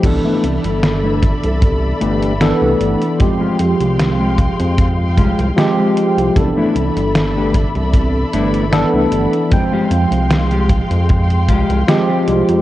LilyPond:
<<
  \new Staff \with { instrumentName = "String section" } { \time 4/4 \key c \major \tempo 4 = 76 <a' d'' e'' b''>1 | <aes f'' g'' c'''>1 | <a' d'' e'' b''>1 | <aes f'' g'' c'''>1 | }
  \new Staff \with { instrumentName = "Clean electric guitar" } { \time 4/4 \key c \major r16 <a b d' e'>16 r8. <a b d' e'>16 r4 <a b d' g'>8 r16 <a b d' g'>8 r16 | r16 <aes f' g'>16 r8. <aes f' g'>16 r4 <aes f' g'>8 r16 <aes f' g'>8 r16 | r16 <a b d' e'>16 r8. <a b d' g'>16 r4 <a b d' e'>8 r16 <a b d' e'>8 r16 | r16 <aes f' g'>16 r8. <aes f' g'>16 r4 <aes f' g'>8 r16 <aes f' g'>8 r16 | }
  \new Staff \with { instrumentName = "Tine electric piano" } { \time 4/4 \key c \major <e b d' a'>2. <e b d' a'>8 r8 | <f aes c' g'>2. <f aes c' g'>8 r8 | <e b d' a'>2. <e b d' a'>8 r8 | <f aes c' g''>2. <f aes c' g'>8 r8 | }
  \new Staff \with { instrumentName = "Analog synth bass" } { \clef bass \time 4/4 \key c \major c,16 r16 c,16 g,,4 c,8. g,,8. c,16 g,,16 r16 | r8 f,16 c,4 f,8. c,16 c,16 r8. c,16 | c,16 r16 c,16 g,,4 c,8. g,,8. c,16 g,,16 r16 | r8 f,16 c,4 f,8. c,16 c,16 r8 c,16 f,16 | }
  \new DrumStaff \with { instrumentName = "Drums" } \drummode { \time 4/4 <cymc hh bd>8 hh16 hh16 <hh sn>8 <hh bd>16 hh16 <hh bd>8 hh16 hh16 <hh sn>8 hh16 hh16 | <hh bd>8 hh16 hh16 <hh sn>8 <hh bd>16 hh16 <hh bd>8 <hh bd>16 hh16 <hh sn>8 hh16 hh16 | <hh bd>8 hh16 hh16 <hh sn>8 <hh bd>16 hh16 <hh bd>8 hh16 hh16 <hh sn>8 hh16 hh16 | <hh bd>8 hh16 hh16 <hh sn>16 hh16 <hh bd>16 hh16 <hh bd>16 hh16 <hh bd>16 hh16 <hh sn>8 hh16 hh16 | }
>>